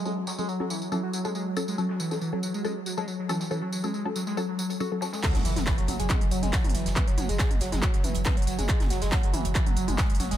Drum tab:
CC |--------------------------------|--------------------------------|--------------------------------|x-------------------------------|
HH |----------x-----------x---------|--------------x-----------------|----------------------x---------|x-x-o-x-o-x-o-x-x-x-o-x-x-xxo-x-|
TB |x---x-x-x---x-x-x---x-x-x---x-x-|x---x-x-x---x-x-x---x-x-x---x-x-|x---x-x-x---x-x-x---x-x-x---x-x-|----x-x-----x-x-x---x-x-x---x-x-|
SH |x---------------x-------x-------|x-------x-------x-------x-------|----x---x---x---x---x---x-------|x---x---x---x---x---x---x---x---|
CP |--------------------------------|--------------------------------|--------------------------------|x-------x-------x-------x-------|
SD |----o---------------------------|--o-o-o---------------------o-o-|------------o-o-------------o-o-|--o-o-o-o---------------o---o-o-|
T2 |--------------------------------|--------------------------------|--------------------------------|--o---o-----o---o-----o---o-----|
BD |--------------------------------|--------------------------------|--------------------------------|o-------o-------o-------o-------|

CC |--------------------------------|--------------------------------|
HH |x-x-o-x-x-x-o-x-x-x-o-x-x-xxo-x-|x-x-o-x-o-x-o-x-x-x-o-x-x-xxo-x-|
TB |----x-x-----x-x-----x-x-x---x-x-|----x-x-----x-x-x---x-x-----x-x-|
SH |x---x---x---x---x---x---x---x---|x---x---x---x---x---x---x---x---|
CP |x-------x-------x-------x-------|x-------x-------x-------x-------|
SD |--------o---o-o---------o-------|--o-o-o-o---------------o---o-o-|
T2 |o---o-----o---o-----o---o-----o-|--o-----o---o-----o---o-----o---|
BD |o-------o-------o-------o-------|o-------o-------o-------o-------|